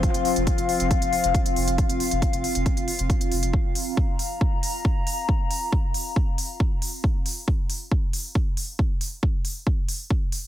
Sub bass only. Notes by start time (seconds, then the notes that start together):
0.14 F1
0.36 F1
0.58 F1
0.80 F1
1.02 F1
1.24 F1
1.56 F1
1.68 F1
1.90 F1
2.11 F1
2.33 F1
2.55 F1
2.77 F1
2.99 F1
3.32 F1
3.43 F1